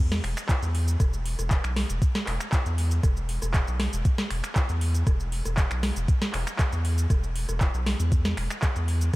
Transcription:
0.00 0.20 E2 loud
0.12 cross-stick medium
0.12 snare medium
0.12 cabasa soft
0.24 0.35 E1 loud
0.24 finger snap medium
0.24 open hi-hat loud
0.37 finger snap medium
0.37 closed hi-hat medium
0.37 cabasa medium
0.49 kick loud
0.49 cross-stick soft
0.49 clap loud
0.49 closed hi-hat medium
0.49 cabasa medium
0.62 0.97 E2 medium
0.62 closed hi-hat soft
0.62 cabasa soft
0.75 open hi-hat loud
0.88 closed hi-hat medium
0.88 cabasa medium
1.00 1.35 E1 loud
1.00 kick loud
1.00 cross-stick medium
1.00 closed hi-hat medium
1.00 cabasa medium
1.13 cabasa soft
1.26 open hi-hat loud
1.39 1.60 E1 loud
1.39 cross-stick soft
1.39 closed hi-hat medium
1.39 cabasa medium
1.51 kick loud
1.51 clap loud
1.51 closed hi-hat medium
1.51 cabasa medium
1.64 1.85 B1 medium
1.64 finger snap medium
1.64 cabasa soft
1.76 cross-stick medium
1.76 snare medium
1.76 open hi-hat loud
1.90 2.00 E1 loud
1.90 closed hi-hat medium
1.90 cabasa medium
2.02 kick loud
2.02 closed hi-hat medium
2.02 cabasa medium
2.15 cross-stick medium
2.15 snare medium
2.15 cabasa soft
2.27 2.38 E1 loud
2.27 finger snap medium
2.27 clap medium
2.27 open hi-hat loud
2.40 finger snap medium
2.40 closed hi-hat medium
2.40 cabasa medium
2.53 kick loud
2.53 cross-stick soft
2.53 clap loud
2.53 closed hi-hat medium
2.53 cabasa medium
2.66 3.00 E2 medium
2.66 closed hi-hat soft
2.66 cabasa soft
2.78 open hi-hat loud
2.91 closed hi-hat medium
2.91 cabasa medium
3.03 3.38 E1 loud
3.03 kick loud
3.03 cross-stick medium
3.03 closed hi-hat medium
3.03 cabasa medium
3.17 cabasa soft
3.29 open hi-hat loud
3.42 3.63 E1 loud
3.42 cross-stick soft
3.42 closed hi-hat medium
3.42 cabasa medium
3.54 kick loud
3.54 clap loud
3.54 closed hi-hat medium
3.54 cabasa medium
3.68 3.88 B1 medium
3.68 cabasa soft
3.80 cross-stick medium
3.80 snare medium
3.80 open hi-hat loud
3.93 4.03 E1 loud
3.93 closed hi-hat medium
3.93 cabasa medium
4.05 kick loud
4.05 closed hi-hat medium
4.05 cabasa medium
4.18 cross-stick medium
4.18 snare medium
4.18 cabasa soft
4.31 4.41 E1 loud
4.31 finger snap medium
4.31 open hi-hat loud
4.44 finger snap medium
4.44 closed hi-hat medium
4.44 cabasa medium
4.56 kick loud
4.56 cross-stick soft
4.56 clap loud
4.56 closed hi-hat medium
4.56 cabasa medium
4.69 5.04 E2 medium
4.69 closed hi-hat soft
4.69 cabasa soft
4.81 open hi-hat loud
4.95 closed hi-hat medium
4.95 cabasa medium
5.07 5.42 E1 loud
5.07 kick loud
5.07 cross-stick medium
5.07 closed hi-hat medium
5.07 cabasa medium
5.20 cabasa soft
5.32 open hi-hat loud
5.45 5.66 E1 loud
5.45 cross-stick soft
5.45 closed hi-hat medium
5.45 cabasa medium
5.58 kick loud
5.58 clap loud
5.58 closed hi-hat medium
5.58 cabasa medium
5.71 5.92 B1 medium
5.71 finger snap medium
5.71 cabasa soft
5.83 cross-stick medium
5.83 snare medium
5.83 open hi-hat loud
5.96 6.06 E1 loud
5.96 closed hi-hat medium
5.96 cabasa medium
6.08 kick loud
6.08 closed hi-hat medium
6.08 cabasa medium
6.22 cross-stick medium
6.22 snare medium
6.22 closed hi-hat soft
6.22 cabasa soft
6.34 6.45 E1 loud
6.34 finger snap medium
6.34 clap medium
6.34 open hi-hat loud
6.47 finger snap medium
6.47 closed hi-hat medium
6.47 cabasa medium
6.59 kick loud
6.59 cross-stick soft
6.59 clap loud
6.59 closed hi-hat medium
6.59 cabasa medium
6.72 7.07 E2 medium
6.72 closed hi-hat soft
6.72 cabasa soft
6.85 open hi-hat loud
6.98 closed hi-hat medium
6.98 cabasa medium
7.10 7.45 E1 loud
7.10 kick loud
7.10 cross-stick medium
7.10 closed hi-hat medium
7.10 cabasa medium
7.24 cabasa soft
7.36 open hi-hat loud
7.49 7.70 E1 loud
7.49 cross-stick soft
7.49 closed hi-hat medium
7.49 cabasa medium
7.61 kick loud
7.61 clap loud
7.61 closed hi-hat medium
7.61 cabasa medium
7.74 7.95 B1 loud
7.74 cabasa soft
7.86 cross-stick medium
7.86 snare medium
7.86 open hi-hat loud
8.00 8.34 E2 loud
8.00 closed hi-hat medium
8.00 cabasa medium
8.12 kick loud
8.12 closed hi-hat medium
8.12 cabasa medium
8.25 cross-stick medium
8.25 snare medium
8.25 cabasa soft
8.37 8.48 E1 loud
8.37 finger snap medium
8.37 open hi-hat loud
8.51 finger snap medium
8.51 closed hi-hat medium
8.51 cabasa medium
8.63 kick loud
8.63 cross-stick soft
8.63 clap loud
8.63 closed hi-hat medium
8.63 cabasa medium
8.76 9.10 E2 medium
8.76 closed hi-hat soft
8.76 cabasa soft
8.88 open hi-hat loud
9.01 closed hi-hat medium
9.01 cabasa medium

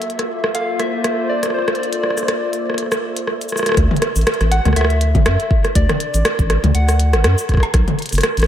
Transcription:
0.00 3.77 A#3 medium
0.00 3.77 F4 medium
0.00 3.77 A4 medium
0.00 0.61 E5 medium
0.00 3.78 E5 medium
0.00 closed hi-hat soft
0.10 closed hi-hat soft
0.19 cross-stick medium
0.19 closed hi-hat medium
0.44 cross-stick medium
0.55 3.77 C5 medium
0.55 0.81 F5 loud
0.55 closed hi-hat medium
0.80 1.31 E5 loud
0.80 cross-stick soft
0.80 closed hi-hat soft
1.04 cross-stick medium
1.04 closed hi-hat medium
1.13 3.77 D5 medium
1.29 1.56 D5 loud
1.43 cross-stick soft
1.43 closed hi-hat medium
1.46 cross-stick soft
1.50 1.78 C5 medium
1.50 cross-stick soft
1.59 cross-stick soft
1.62 cross-stick soft
1.68 cross-stick medium
1.68 closed hi-hat soft
1.75 3.24 D5 loud
1.75 closed hi-hat soft
1.83 closed hi-hat soft
1.93 closed hi-hat medium
2.03 cross-stick medium
2.10 cross-stick soft
2.17 cross-stick soft
2.17 cabasa medium
2.23 cross-stick soft
2.28 cross-stick medium
2.28 closed hi-hat medium
2.53 closed hi-hat medium
2.70 cross-stick soft
2.74 cross-stick soft
2.78 cross-stick soft
2.78 closed hi-hat medium
2.83 cross-stick soft
2.86 cross-stick soft
2.92 cross-stick medium
2.92 cabasa medium
3.17 closed hi-hat medium
3.27 cross-stick medium
3.41 closed hi-hat medium
3.41 cabasa soft
3.49 cross-stick soft
3.49 cabasa soft
3.56 cross-stick soft
3.56 cabasa medium
3.59 cross-stick soft
3.63 cross-stick medium
3.66 cross-stick medium
3.66 closed hi-hat medium
3.69 cross-stick medium
3.72 cross-stick medium
3.74 3.88 D2 loud
3.74 kick loud
3.74 cross-stick medium
3.74 closed hi-hat medium
3.91 high tom medium
3.96 closed hi-hat soft
4.02 cross-stick medium
4.02 closed hi-hat medium
4.16 4.25 A1 medium
4.16 closed hi-hat soft
4.16 cabasa medium
4.21 closed hi-hat soft
4.27 cross-stick loud
4.27 closed hi-hat loud
4.34 closed hi-hat soft
4.41 4.60 A1 medium
4.41 cross-stick medium
4.41 closed hi-hat soft
4.51 4.78 F#5 loud
4.51 closed hi-hat medium
4.65 4.74 D2 loud
4.65 cross-stick soft
4.65 closed hi-hat soft
4.65 high tom medium
4.68 cross-stick soft
4.73 5.16 D2 medium
4.73 cross-stick medium
4.76 5.77 E5 loud
4.76 cross-stick medium
4.76 closed hi-hat loud
4.81 cross-stick medium
4.85 cross-stick medium
4.90 closed hi-hat soft
5.01 closed hi-hat medium
5.15 5.27 A1 medium
5.15 kick loud
5.15 closed hi-hat soft
5.15 high tom medium
5.26 5.37 F#2 loud
5.26 cross-stick loud
5.26 closed hi-hat loud
5.40 closed hi-hat soft
5.51 kick loud
5.65 cross-stick medium
5.65 closed hi-hat soft
5.75 5.87 D2 loud
5.75 6.74 D5 loud
5.75 kick loud
5.75 closed hi-hat loud
5.89 cross-stick medium
5.89 closed hi-hat soft
5.89 high tom medium
6.00 closed hi-hat medium
6.14 6.23 A1 medium
6.14 closed hi-hat soft
6.14 cabasa medium
6.25 cross-stick loud
6.25 closed hi-hat loud
6.39 6.58 A1 medium
6.39 kick medium
6.39 closed hi-hat soft
6.50 cross-stick medium
6.50 closed hi-hat medium
6.64 6.72 D2 loud
6.64 closed hi-hat soft
6.64 high tom medium
6.75 7.15 D2 medium
6.75 7.45 F#5 loud
6.75 closed hi-hat loud
6.89 cross-stick medium
6.89 closed hi-hat soft
6.89 cabasa medium
7.00 closed hi-hat medium
7.13 7.26 A1 medium
7.13 cross-stick medium
7.13 closed hi-hat soft
7.24 7.35 F#2 loud
7.24 cross-stick loud
7.24 closed hi-hat loud
7.38 cabasa medium
7.49 kick medium
7.49 cross-stick soft
7.49 closed hi-hat soft
7.52 kick medium
7.52 cross-stick soft
7.55 kick loud
7.55 cross-stick soft
7.57 cross-stick soft
7.60 cross-stick soft
7.63 cross-stick medium
7.63 closed hi-hat soft
7.74 7.85 B1 loud
7.74 kick loud
7.74 cross-stick medium
7.74 closed hi-hat medium
7.88 closed hi-hat soft
7.88 high tom medium
7.99 closed hi-hat soft
8.02 closed hi-hat soft
8.06 closed hi-hat soft
8.09 closed hi-hat soft
8.13 8.21 F#1 medium
8.13 closed hi-hat soft
8.13 cabasa medium
8.15 cross-stick medium
8.15 closed hi-hat medium
8.18 closed hi-hat medium
8.21 cross-stick loud
8.21 closed hi-hat medium
8.23 closed hi-hat loud
8.37 8.47 A1 medium
8.37 closed hi-hat soft
8.39 cross-stick medium
8.39 closed hi-hat soft
8.44 closed hi-hat soft

